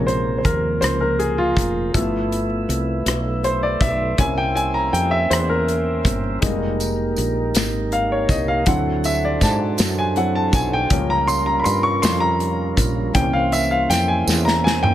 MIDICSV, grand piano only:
0, 0, Header, 1, 2, 480
1, 0, Start_track
1, 0, Tempo, 747198
1, 1247, Time_signature, 6, 3, 24, 8
1, 9600, End_track
2, 0, Start_track
2, 0, Title_t, "Grand piano"
2, 0, Program_c, 0, 0
2, 0, Control_c, 0, 64, 127
2, 0, Note_on_c, 0, 48, 50
2, 0, Note_on_c, 0, 49, 46
2, 0, Note_on_c, 0, 56, 40
2, 0, Note_on_c, 0, 73, 68
2, 42, Note_on_c, 0, 72, 72
2, 236, Note_off_c, 0, 72, 0
2, 246, Note_on_c, 0, 72, 49
2, 288, Note_off_c, 0, 72, 0
2, 288, Note_on_c, 0, 70, 69
2, 498, Note_off_c, 0, 49, 0
2, 501, Note_off_c, 0, 56, 0
2, 502, Note_off_c, 0, 48, 0
2, 511, Note_off_c, 0, 70, 0
2, 519, Note_on_c, 0, 72, 74
2, 634, Note_off_c, 0, 72, 0
2, 646, Note_on_c, 0, 70, 66
2, 758, Note_off_c, 0, 70, 0
2, 765, Note_on_c, 0, 68, 69
2, 877, Note_off_c, 0, 68, 0
2, 888, Note_on_c, 0, 65, 87
2, 1246, Note_on_c, 0, 53, 46
2, 1248, Note_on_c, 0, 57, 45
2, 1249, Note_on_c, 0, 59, 42
2, 1252, Note_on_c, 0, 64, 51
2, 1254, Control_c, 0, 64, 0
2, 1260, Note_off_c, 0, 73, 0
2, 1372, Control_c, 0, 64, 127
2, 1566, Note_off_c, 0, 53, 0
2, 1567, Note_off_c, 0, 57, 0
2, 1568, Note_off_c, 0, 59, 0
2, 1569, Note_off_c, 0, 64, 0
2, 2063, Note_off_c, 0, 65, 0
2, 2212, Note_on_c, 0, 72, 74
2, 2331, Note_on_c, 0, 74, 75
2, 2334, Note_off_c, 0, 72, 0
2, 2450, Note_on_c, 0, 76, 81
2, 2453, Note_off_c, 0, 74, 0
2, 2673, Note_off_c, 0, 76, 0
2, 2686, Note_on_c, 0, 58, 46
2, 2688, Note_on_c, 0, 61, 43
2, 2691, Note_on_c, 0, 64, 52
2, 2694, Note_on_c, 0, 80, 86
2, 2698, Control_c, 0, 64, 0
2, 2811, Note_on_c, 0, 79, 85
2, 2815, Note_off_c, 0, 80, 0
2, 2815, Control_c, 0, 64, 127
2, 2926, Note_on_c, 0, 80, 88
2, 2934, Note_off_c, 0, 79, 0
2, 3039, Note_off_c, 0, 80, 0
2, 3046, Note_on_c, 0, 82, 78
2, 3078, Note_off_c, 0, 82, 0
2, 3167, Note_on_c, 0, 79, 82
2, 3283, Note_on_c, 0, 76, 84
2, 3292, Note_off_c, 0, 79, 0
2, 3407, Note_on_c, 0, 72, 81
2, 3410, Note_off_c, 0, 76, 0
2, 3520, Note_off_c, 0, 72, 0
2, 3529, Note_on_c, 0, 70, 72
2, 3983, Note_off_c, 0, 70, 0
2, 4102, Note_off_c, 0, 58, 0
2, 4103, Note_off_c, 0, 61, 0
2, 4105, Note_off_c, 0, 64, 0
2, 4116, Note_on_c, 0, 55, 48
2, 4119, Note_on_c, 0, 56, 40
2, 4121, Note_on_c, 0, 58, 42
2, 4125, Note_on_c, 0, 63, 54
2, 4137, Control_c, 0, 64, 0
2, 4241, Control_c, 0, 64, 127
2, 4441, Note_off_c, 0, 55, 0
2, 4443, Note_off_c, 0, 56, 0
2, 4444, Note_off_c, 0, 58, 0
2, 4446, Note_off_c, 0, 63, 0
2, 5091, Note_on_c, 0, 77, 71
2, 5202, Note_off_c, 0, 77, 0
2, 5216, Note_on_c, 0, 73, 69
2, 5324, Note_off_c, 0, 73, 0
2, 5331, Note_on_c, 0, 75, 65
2, 5442, Note_off_c, 0, 75, 0
2, 5449, Note_on_c, 0, 77, 74
2, 5561, Note_off_c, 0, 77, 0
2, 5565, Note_on_c, 0, 54, 51
2, 5569, Note_on_c, 0, 60, 45
2, 5572, Note_on_c, 0, 64, 52
2, 5574, Note_on_c, 0, 78, 80
2, 5578, Control_c, 0, 64, 0
2, 5696, Control_c, 0, 64, 127
2, 5795, Note_off_c, 0, 78, 0
2, 5816, Note_on_c, 0, 76, 76
2, 5924, Note_off_c, 0, 76, 0
2, 5940, Note_on_c, 0, 74, 65
2, 6058, Note_off_c, 0, 74, 0
2, 6060, Note_on_c, 0, 81, 82
2, 6415, Note_on_c, 0, 80, 73
2, 6425, Note_off_c, 0, 81, 0
2, 6519, Note_off_c, 0, 54, 0
2, 6521, Note_off_c, 0, 60, 0
2, 6523, Note_off_c, 0, 64, 0
2, 6529, Note_on_c, 0, 54, 45
2, 6530, Note_on_c, 0, 60, 41
2, 6533, Note_on_c, 0, 64, 49
2, 6534, Note_on_c, 0, 78, 80
2, 6535, Note_off_c, 0, 80, 0
2, 6643, Note_off_c, 0, 78, 0
2, 6652, Note_on_c, 0, 81, 86
2, 6745, Note_off_c, 0, 54, 0
2, 6745, Note_off_c, 0, 60, 0
2, 6747, Note_off_c, 0, 64, 0
2, 6762, Note_off_c, 0, 81, 0
2, 6773, Note_on_c, 0, 80, 79
2, 6894, Note_off_c, 0, 80, 0
2, 6896, Note_on_c, 0, 79, 88
2, 7002, Note_on_c, 0, 53, 49
2, 7008, Note_on_c, 0, 58, 44
2, 7012, Note_on_c, 0, 61, 56
2, 7017, Control_c, 0, 64, 0
2, 7130, Note_on_c, 0, 82, 88
2, 7132, Control_c, 0, 64, 127
2, 7139, Note_off_c, 0, 79, 0
2, 7241, Note_off_c, 0, 82, 0
2, 7243, Note_on_c, 0, 84, 95
2, 7324, Note_off_c, 0, 53, 0
2, 7327, Note_off_c, 0, 58, 0
2, 7329, Note_off_c, 0, 61, 0
2, 7357, Note_off_c, 0, 84, 0
2, 7362, Note_on_c, 0, 82, 83
2, 7449, Note_on_c, 0, 83, 66
2, 7458, Note_off_c, 0, 82, 0
2, 7479, Note_on_c, 0, 84, 89
2, 7484, Note_off_c, 0, 83, 0
2, 7601, Note_on_c, 0, 85, 92
2, 7607, Note_off_c, 0, 84, 0
2, 7724, Note_on_c, 0, 84, 89
2, 7728, Note_off_c, 0, 85, 0
2, 7840, Note_on_c, 0, 82, 90
2, 7849, Note_off_c, 0, 84, 0
2, 8298, Note_off_c, 0, 82, 0
2, 8439, Note_on_c, 0, 52, 50
2, 8444, Note_on_c, 0, 58, 45
2, 8445, Note_on_c, 0, 79, 88
2, 8448, Note_on_c, 0, 61, 52
2, 8455, Control_c, 0, 64, 0
2, 8552, Control_c, 0, 64, 127
2, 8566, Note_on_c, 0, 77, 80
2, 8570, Note_off_c, 0, 79, 0
2, 8689, Note_on_c, 0, 76, 79
2, 8690, Note_off_c, 0, 77, 0
2, 8807, Note_on_c, 0, 77, 81
2, 8812, Note_off_c, 0, 76, 0
2, 8928, Note_on_c, 0, 79, 84
2, 8931, Note_off_c, 0, 77, 0
2, 9039, Note_off_c, 0, 79, 0
2, 9046, Note_on_c, 0, 80, 80
2, 9137, Note_off_c, 0, 52, 0
2, 9140, Note_off_c, 0, 58, 0
2, 9142, Note_off_c, 0, 61, 0
2, 9270, Note_off_c, 0, 80, 0
2, 9283, Note_on_c, 0, 82, 81
2, 9396, Note_off_c, 0, 82, 0
2, 9406, Note_on_c, 0, 80, 84
2, 9524, Note_on_c, 0, 79, 90
2, 9530, Note_off_c, 0, 80, 0
2, 9600, Note_off_c, 0, 79, 0
2, 9600, End_track
0, 0, End_of_file